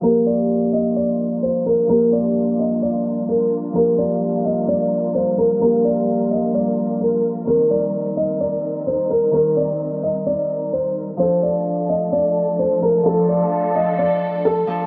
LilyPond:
<<
  \new Staff \with { instrumentName = "Grand piano" } { \time 4/4 \key g \minor \tempo 4 = 129 bes'8 d''4 ees''8 d''4 c''8 bes'8 | bes'8 d''4 ees''8 d''4 bes'8 r8 | bes'8 d''4 ees''8 d''4 c''8 bes'8 | bes'8 d''4 ees''8 d''4 bes'8 r8 |
bes'8 d''4 ees''8 d''4 c''8 bes'8 | bes'8 d''4 ees''8 d''4 c''8 r8 | c''8 d''4 ees''8 d''4 c''8 bes'8 | a'8 d''4 ees''8 d''4 a'8 r8 | }
  \new Staff \with { instrumentName = "String section" } { \time 4/4 \key g \minor << { <g bes'>1~ | <g bes'>1~ | <g bes'>1~ | <g bes'>1~ |
<g bes'>1~ | <g bes'>1 | <f a'>1~ | <f a'>1 | } \\ { <d' f'>1~ | <d' f'>1~ | <d' f'>1~ | <d' f'>1 |
<c' ees'>1~ | <c' ees'>1 | <a d'>1~ | <a d'>1 | } >> }
  \new Staff \with { instrumentName = "Harp" } { \time 4/4 \key g \minor <f bes g'>1 | <f bes g'>1 | <f bes g'>1 | <f bes g'>1 |
<ees c' bes'>1 | <ees c' bes'>1 | <f d' a'>1 | <f d' a'>2.~ <f d' a'>8 <f d' a'>8 | }
>>